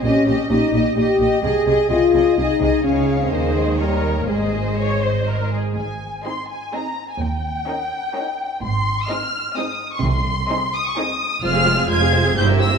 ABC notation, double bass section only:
X:1
M:3/4
L:1/8
Q:1/4=128
K:Ab
V:1 name="Double bass section" clef=bass
B,,, B,,, B,,, B,,, B,,, B,,, | C,, C,, C,, C,, C,, C,, | D,,2 E,,4 | A,,,4- A,,, z |
A,,,2 z4 | E,,2 z4 | A,,,2 z4 | C,,2 z4 |
[K:Fm] F,,,2 F,,,2 G,,,2 |]